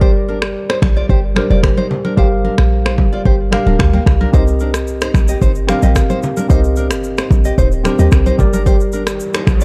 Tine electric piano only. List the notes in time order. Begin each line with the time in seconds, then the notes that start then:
Already playing: G3 G4 A#4 D5
1.35 G3 G4 A#4 C5
2.16 G3 G4 A#4 F5
3.51 G3 G4 A#4 F5
4.32 C4 G4 A#4 D#5
5.67 C4 G4 A#4 F5
6.48 C4 G4 A#4 D#5
7.84 C4 G4 A#4 C5
8.38 G3 G4 A#4 D5